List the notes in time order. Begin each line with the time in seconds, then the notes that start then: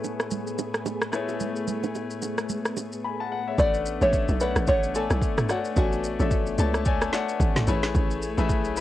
Already playing: A2 A3 B3 E4 G#4 B4 C#5
0.04 low bongo, shaker
0.20 cross-stick, shaker
0.31 low conga, shaker
0.47 shaker
0.58 high bongo, low bongo, shaker
0.74 cross-stick, shaker
0.86 high bongo, low bongo, shaker
1.01 cross-stick, shaker
1.12 A3 E4 G#4 B4 C#5, cross-stick, shaker
1.28 high bongo, shaker
1.40 low conga, shaker
1.56 shaker
1.68 low conga, shaker
1.83 low bongo, shaker
1.95 high bongo, shaker
2.10 shaker
2.22 low bongo, shaker
2.38 cross-stick, shaker
2.49 low conga, shaker
2.65 cross-stick, shaker
2.77 high bongo, low bongo, shaker
2.92 shaker
3.04 G#5 B5
3.20 F#5 A5
3.32 F#5
3.48 C#5 E5
3.58 A1 A3 B3 D4 A4 B4 D5 F#5, kick, shaker
3.74 shaker
3.86 shaker
4.01 A1 A3 D4 A4 C#5 E5, shaker
4.13 kick, shaker
4.29 B1, shaker
4.40 A3 A4 B4 C#5 D5 F#5, shaker
4.56 A1, cross-stick, shaker
4.67 A1 A3 A4 C#5 D5 F#5, kick, shaker
4.84 shaker
4.94 A3 A4 C#5 D5 G#5, shaker
5.11 B1, cross-stick, shaker
5.22 kick, shaker
5.38 cross-stick, mid tom, shaker
5.49 A3 F#4 A4 C#5 D5 F#5, cross-stick, shaker
5.65 shaker
5.76 A1 A3 F#4 A4 C#5 D5 G#5, kick, shaker
5.93 shaker
6.04 shaker
6.19 A1 A3 A4 C#5 D5 E5, shaker
6.31 kick, shaker
6.47 shaker
6.58 C#2 A3 A4 C#5 D5 A5, shaker
6.74 cross-stick, shaker
6.85 A3 A4 C#5 D5 G#5, kick, shaker
7.02 cross-stick, shaker
7.13 A3 A4 C#5 D5 F#5, snare, shaker
7.29 shaker
7.40 A1, kick, shaker
7.56 snare, mid tom, shaker
7.67 A1 A3 C#4 E4 G#4 B4 C#5, shaker
7.83 snare, shaker
7.95 A1, kick, shaker
8.11 shaker
8.22 shaker
8.37 A1 A3 E4 G#4 B4 E5, shaker
8.49 kick, shaker
8.65 B1, shaker
8.76 A3 E4 G#4, shaker